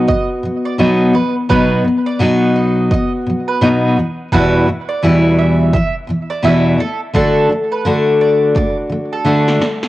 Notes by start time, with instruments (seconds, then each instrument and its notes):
Already playing: steel-string acoustic guitar F#3 B3 F#4
0.07 steel-string acoustic guitar B2 F#3, mandolin D#5, kick
0.43 steel-string acoustic guitar B2 F#3
0.65 mandolin D5
0.78 steel-string acoustic guitar B2 F#3 B3 D#4 F#4, mandolin D#5
1.13 steel-string acoustic guitar B2 F#3, mandolin B4
1.49 steel-string acoustic guitar B2 F#3 B3 D#4 F#4, mandolin B4, kick
1.84 steel-string acoustic guitar B2 F#3
2.06 mandolin D5
2.19 steel-string acoustic guitar B2 F#3 B3 D#4 F#4
2.56 mandolin D#5
2.91 steel-string acoustic guitar B2 F#3, mandolin D#5, kick
3.27 steel-string acoustic guitar B2 F#3
3.48 mandolin B4
3.61 steel-string acoustic guitar B2 F#3 B3 D#4 F#4
3.97 steel-string acoustic guitar E2 B2
4.32 steel-string acoustic guitar E2 B2 E3 G3 E4 F#4, mandolin B4, kick
4.67 steel-string acoustic guitar E2 B2
4.89 mandolin D5
5.03 steel-string acoustic guitar E2 B2 E3 G3 E4 F#4
5.38 mandolin E5
5.73 steel-string acoustic guitar E2 B2 E3, mandolin E5, kick
6.07 steel-string acoustic guitar E2 B2 E3
6.30 mandolin D5
6.42 steel-string acoustic guitar E2 B2 E3 G3 E4 F#4, mandolin E5
6.78 steel-string acoustic guitar D3 A3, mandolin A4
7.14 steel-string acoustic guitar D3 A3 D4 F#4, mandolin A4, kick
7.49 steel-string acoustic guitar D3 A3
7.72 mandolin B4
7.85 steel-string acoustic guitar D3 A3 D4 F#4
8.21 mandolin D5
8.55 steel-string acoustic guitar D3 A3, mandolin D5, kick
8.90 steel-string acoustic guitar D3 A3
9.13 mandolin A4
9.25 steel-string acoustic guitar D3 A3 D4 F#4
9.48 snare
9.60 steel-string acoustic guitar D3 A3, snare
9.83 snare